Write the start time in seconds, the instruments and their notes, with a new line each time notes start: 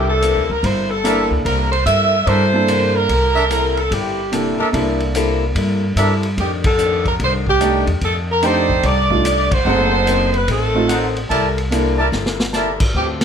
Already playing: upright bass C2, trumpet section D4 A4 C5 E5, steel-string acoustic guitar A4
0.10 saxophone section A4
0.21 steel-string acoustic guitar C3 A#3 E4 A4, hi-hat pedal, ride
0.37 upright bass D2
0.50 upright bass C#2, saxophone section A#4
0.62 upright bass G1, steel-string acoustic guitar C3 A#3 E4 A4, saxophone section C5, kick, ride
0.91 saxophone section A4
1.03 steel-string acoustic guitar C3 A#3 E4 A4, grand piano A#3 D4 E4 A4, trumpet section D4 A4 A#4 E5, hi-hat pedal, ride
1.31 upright bass C#2
1.45 upright bass C2, steel-string acoustic guitar C3 A#3 E4 A4, saxophone section A#4, kick, ride
1.72 saxophone section C5, ride
1.86 upright bass G2, steel-string acoustic guitar C3 A#3 E4 A4, saxophone section E5, hi-hat pedal, ride
2.26 upright bass G2, steel-string acoustic guitar C3 A#3 E4 A4, trumpet section D4 A4 A#4 E5, saxophone section C5, kick, ride
2.53 grand piano A#3 D4 E4 A4
2.68 steel-string acoustic guitar C3 A#3 E4 A4, hi-hat pedal, ride
2.96 saxophone section A#4
3.08 upright bass C2, steel-string acoustic guitar C3 A#3 E4 A4, kick, ride
3.35 trumpet section D4 A4 A#4 E5
3.49 steel-string acoustic guitar C3 A#3 E4 A4, hi-hat pedal, ride
3.77 saxophone section A4, ride
3.91 upright bass G1, steel-string acoustic guitar C3 A#3 E4 A4, saxophone section G4, kick, ride
4.32 steel-string acoustic guitar C3 A#3 E4 A4, grand piano A#3 D4 E4 A4, hi-hat pedal, ride
4.59 trumpet section D4 A4 A#4 E5, muted upright bass stroke
4.72 upright bass C2, steel-string acoustic guitar C3 A#3 E4 A4, grand piano A#3 D4 E4 A4, kick, ride
5.00 ride
5.15 steel-string acoustic guitar C3 A#3 E4 A4, hi-hat pedal, ride
5.55 upright bass G2, steel-string acoustic guitar C3 A#3 E4 A4, kick, ride
5.96 upright bass G2, steel-string acoustic guitar C3 A#3 E4 A4, trumpet section D4 A4 A#4 E5, hi-hat pedal, ride
6.23 ride
6.38 upright bass F2, steel-string acoustic guitar F2 D#3 A3 D4, saxophone section G4, kick, ride
6.64 saxophone section A4, kick, ride
6.78 steel-string acoustic guitar F2 D#3 A3 D4, hi-hat pedal
7.05 saxophone section A#4, kick, ride
7.19 upright bass C2, steel-string acoustic guitar F2 D#3 A3 D4, saxophone section C5, kick, ride
7.47 saxophone section G4, kick
7.60 steel-string acoustic guitar F2 D#3 A3 D4, grand piano A3 D4 D#4 G4, trumpet section D#4 A4 D5 G5, hi-hat pedal, ride
7.87 upright bass E2, ride
8.01 upright bass F2, steel-string acoustic guitar F2 D#3 A3 D4, saxophone section A4, kick, ride
8.32 saxophone section A#4
8.41 steel-string acoustic guitar F2 D#3 A3 D4, grand piano A3 D4 D#4 G4, trumpet section D#4 A4 D5 G5, saxophone section C5, hi-hat pedal, ride
8.69 kick
8.83 upright bass C2, steel-string acoustic guitar F2 D#3 A3 D4, saxophone section D5, kick, ride
9.09 grand piano A3 D4 D#4 F4, kick
9.24 steel-string acoustic guitar F2 D#3 A3 D4, hi-hat pedal, ride
9.51 upright bass G1, saxophone section C5, kick, ride
9.65 upright bass F#1, steel-string acoustic guitar F#2 D#3 A3 C4, grand piano A3 C4 D#4 G#4, trumpet section D#4 A4 C5 F#5
10.07 steel-string acoustic guitar F#2 D#3 A3 C4, hi-hat pedal, ride
10.34 saxophone section B4, ride
10.47 upright bass A1, steel-string acoustic guitar F#2 D#3 A3 C4, kick, ride
10.52 saxophone section A4
10.75 grand piano A3 C4 D#4 F4
10.89 steel-string acoustic guitar F#2 D#3 A3 C4, trumpet section D#4 A4 C5 F#5, hi-hat pedal, ride
11.17 ride
11.30 upright bass C2, steel-string acoustic guitar C3 A#3 E4 A4, trumpet section E4 A#4 D5 A5, kick, ride
11.58 ride
11.70 steel-string acoustic guitar C3 A#3 E4 A4, grand piano A#3 D4 E4 A4, hi-hat pedal, ride
11.98 trumpet section E4 A#4 D5 A5
12.12 upright bass G1, steel-string acoustic guitar C3 A#3 E4 A4, snare
12.26 snare
12.40 snare
12.53 steel-string acoustic guitar C3 A#3 E4 A4, trumpet section E4 A#4 D5 A5, snare, hi-hat pedal
12.80 kick, crash
12.94 upright bass D2, steel-string acoustic guitar D3 C4 F4 A4, saxophone section G4, kick
13.21 snare, ride